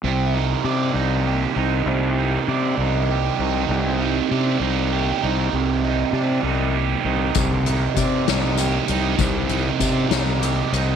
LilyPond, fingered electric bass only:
\new Staff \with { instrumentName = "Fingered electric bass" } { \clef bass \time 6/8 \key c \minor \tempo 4. = 66 c,4 c8 c,4 c,8 | c,4 c8 c,4 c,8 | c,4 c8 c,4 c,8 | c,4 c8 c,4 c,8 |
c,4 c8 c,4 c,8 | c,4 c8 c,4 c,8 | }